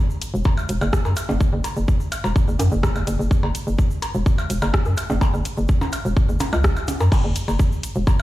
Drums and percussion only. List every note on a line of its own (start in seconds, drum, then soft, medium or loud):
0.10 shaker soft
0.22 closed hi-hat medium
0.22 shaker medium
0.35 shaker soft
0.44 kick loud
0.44 percussion blips medium
0.44 shaker soft
0.57 percussion blips medium
0.57 shaker soft
0.69 closed hi-hat medium
0.69 shaker medium
0.81 percussion blips medium
0.81 shaker soft
0.93 kick loud
0.93 cross-stick loud
0.93 shaker soft
1.05 percussion blips medium
1.05 shaker soft
1.16 closed hi-hat medium
1.16 percussion blips medium
1.16 shaker loud
1.29 percussion blips medium
1.29 shaker soft
1.40 kick loud
1.40 shaker medium
1.64 closed hi-hat medium
1.64 percussion blips medium
1.64 shaker medium
1.76 shaker soft
1.88 kick loud
1.88 shaker soft
2.00 shaker soft
2.12 closed hi-hat medium
2.12 percussion blips medium
2.12 shaker medium
2.24 percussion blips medium
2.24 shaker soft
2.36 kick loud
2.36 shaker soft
2.48 shaker soft
2.59 closed hi-hat medium
2.59 percussion blips medium
2.59 shaker medium
2.72 shaker soft
2.83 kick loud
2.83 cross-stick loud
2.83 percussion blips medium
2.83 shaker soft
2.95 percussion blips medium
2.95 shaker soft
3.07 closed hi-hat medium
3.07 shaker loud
3.21 shaker soft
3.31 kick loud
3.31 shaker soft
3.43 percussion blips medium
3.55 closed hi-hat medium
3.55 shaker medium
3.67 shaker soft
3.79 kick loud
3.79 shaker soft
3.90 shaker soft
4.02 closed hi-hat medium
4.02 percussion blips medium
4.02 shaker medium
4.14 shaker soft
4.26 kick loud
4.26 shaker soft
4.38 percussion blips medium
4.38 shaker soft
4.50 closed hi-hat medium
4.50 shaker medium
4.61 percussion blips medium
4.61 shaker soft
4.74 kick loud
4.74 cross-stick loud
4.74 shaker soft
4.85 shaker soft
4.97 closed hi-hat medium
4.97 percussion blips medium
4.97 shaker medium
5.10 percussion blips medium
5.10 shaker soft
5.21 kick loud
5.21 percussion blips medium
5.21 shaker soft
5.34 shaker soft
5.45 closed hi-hat medium
5.45 shaker medium
5.57 shaker soft
5.68 kick loud
5.68 shaker soft
5.81 percussion blips medium
5.81 shaker soft
5.92 closed hi-hat medium
5.92 percussion blips medium
5.92 shaker medium
6.05 shaker soft
6.17 kick loud
6.17 shaker soft
6.29 shaker soft
6.40 closed hi-hat medium
6.40 percussion blips medium
6.40 shaker medium
6.53 percussion blips medium
6.53 shaker soft
6.64 kick loud
6.64 cross-stick loud
6.64 shaker soft
6.76 percussion blips medium
6.76 shaker soft
6.88 closed hi-hat medium
6.88 percussion blips medium
6.88 shaker medium
7.00 percussion blips medium
7.00 shaker soft
7.12 kick loud
7.12 crash loud
7.12 percussion blips medium
7.12 shaker medium
7.36 closed hi-hat medium
7.36 shaker medium
7.48 percussion blips medium
7.48 shaker soft
7.59 kick loud
7.59 shaker medium
7.72 shaker soft
7.83 closed hi-hat medium
7.83 shaker medium
7.95 shaker soft
8.07 kick loud
8.07 percussion blips medium
8.07 shaker soft